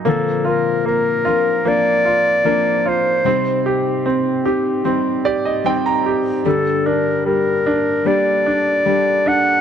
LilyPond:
<<
  \new Staff \with { instrumentName = "Clarinet" } { \time 4/4 \key bes \major \tempo 4 = 75 a'8 bes'8 bes'4 d''4. c''8~ | c''8 r2. r8 | a'8 bes'8 bes'4 d''4. ges''8 | }
  \new Staff \with { instrumentName = "Grand piano" } { \time 4/4 \key bes \major << { r1 | r2 r8 d''16 ees''16 g''16 bes''8. | r1 | } \\ { bes8 f'8 bes8 f'8 bes8 f'8 bes8 f'8 | c'8 g'8 c'8 g'8 c'8 g'8 c'8 g'8 | g8 d'8 g8 d'8 g8 d'8 g8 d'8 | } >> }
  \new Staff \with { instrumentName = "Steel-string acoustic guitar" } { \time 4/4 \key bes \major <bes, d f c' d'>4. <f c' d' bes'>8 <f c' d' bes'>4 <f c' d' bes'>4 | <c g c' ees' g'>4. <c' ees' g'>8 <g c' ees' g'>4 <g c' ees' g'>4 | <g, d g bes d'>2 <g bes d' a'>4 <g bes d' a'>4 | }
>>